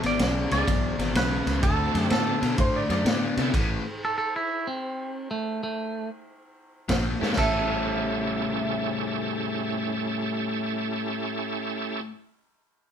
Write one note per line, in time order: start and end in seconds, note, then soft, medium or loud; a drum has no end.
0.03 0.17 G#1 medium
0.03 0.19 E2 medium
0.03 0.19 B2 medium
0.03 0.51 D5 medium
0.03 snare soft
0.03 ride medium
0.19 0.45 B1 medium
0.19 0.48 E2 medium
0.19 0.48 C#3 medium
0.19 snare loud
0.19 ride medium
0.51 0.65 C#2 medium
0.51 0.66 E2 medium
0.51 0.66 C#3 medium
0.51 0.66 G#3 medium
0.51 0.66 B3 medium
0.51 0.66 D4 medium
0.51 0.67 E4 medium
0.51 0.67 G#4 medium
0.51 1.12 D5 medium
0.51 snare soft
0.51 ride medium
0.67 0.93 B1 medium
0.67 0.96 E2 medium
0.67 0.96 B2 medium
0.67 kick loud
0.67 snare soft
0.67 ride medium
0.98 1.12 G#1 medium
0.98 1.14 E2 medium
0.98 1.14 B2 medium
0.98 snare soft
0.98 ride medium
1.15 1.40 B1 medium
1.15 1.43 E2 medium
1.15 1.44 C#3 medium
1.15 1.61 B4 medium
1.15 snare loud
1.15 ride medium
1.46 1.60 C#2 medium
1.46 1.61 E2 medium
1.46 1.62 C#3 medium
1.46 snare soft
1.46 ride medium
1.62 1.88 D2 medium
1.62 1.91 D3 medium
1.62 2.35 A3 soft
1.62 1.91 A3 medium
1.62 2.36 C4 medium
1.62 2.36 D4 soft
1.62 2.36 F#4 medium
1.62 2.10 A4 medium
1.62 2.36 A4 medium
1.62 kick loud
1.62 ride medium
1.93 2.08 F#2 medium
1.93 2.08 D3 medium
1.93 2.08 A3 medium
1.93 snare soft
1.93 ride medium
2.10 2.36 A2 medium
2.10 2.39 D3 medium
2.10 2.39 B3 medium
2.10 2.56 A4 medium
2.10 snare loud
2.10 ride medium
2.41 2.55 B2 medium
2.41 2.55 D3 medium
2.41 2.57 B3 medium
2.41 snare soft
2.41 ride medium
2.57 2.84 A2 medium
2.57 2.86 D3 medium
2.57 2.86 A3 medium
2.57 2.75 C5 medium
2.57 kick loud
2.57 ride medium
2.76 2.90 D5 medium
2.89 3.03 F#2 medium
2.89 3.03 D3 medium
2.89 3.05 A3 medium
2.89 3.45 D5 medium
2.89 snare soft
2.89 ride medium
3.04 3.30 A2 medium
3.04 3.34 D3 medium
3.04 3.34 B3 medium
3.04 snare loud
3.04 ride medium
3.36 3.51 C3 medium
3.36 3.52 D3 medium
3.36 3.52 A3 medium
3.36 3.53 B3 medium
3.36 3.52 C#4 medium
3.36 3.53 E4 medium
3.36 3.53 G4 medium
3.36 3.53 A4 medium
3.36 snare soft
3.36 ride medium
3.53 3.79 A1 medium
3.53 3.82 A2 medium
3.53 3.82 E3 medium
3.53 kick loud
3.53 crash medium
3.53 ride medium
4.05 4.17 A4 medium
4.18 4.33 A4 medium
4.36 4.66 E4 medium
4.67 5.29 C4 medium
5.31 5.61 A3 medium
5.63 6.09 A3 loud
6.89 7.15 A#1 medium
6.89 7.17 A#2 medium
6.89 7.17 F3 medium
6.89 kick medium
6.89 snare loud
6.89 ride medium
7.19 7.35 G#2 medium
7.19 7.36 A#2 medium
7.19 7.36 G3 medium
7.19 7.35 A3 medium
7.19 7.35 C#4 medium
7.19 7.35 E4 medium
7.19 7.35 G4 medium
7.19 7.36 A4 medium
7.19 snare medium
7.33 12.11 A2 medium
7.33 12.00 A3 medium
7.33 12.00 C#4 medium
7.33 snare medium
7.37 12.08 A1 medium
7.37 12.12 G3 medium
7.37 12.13 C#4 medium
7.37 12.01 E4 medium
7.37 12.15 E4 medium
7.37 12.01 G4 medium
7.37 12.01 A4 medium
7.37 12.09 A4 medium
7.37 12.09 E5 medium
7.37 kick loud
7.37 crash medium